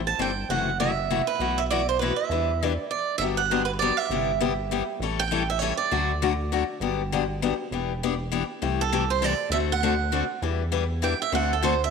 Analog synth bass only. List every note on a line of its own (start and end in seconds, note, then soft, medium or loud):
0.00 0.14 A1 medium
0.19 0.44 G1 medium
0.49 1.21 F#1 medium
1.39 2.12 B1 medium
2.30 2.78 E2 medium
3.19 3.92 G1 medium
4.10 4.82 G1 medium
5.00 5.72 A1 medium
5.92 6.64 D2 medium
6.80 7.53 G1 medium
7.71 8.44 E1 medium
8.62 9.34 C2 medium
9.50 10.23 D2 medium
10.42 11.14 E2 medium
11.32 11.90 D2 medium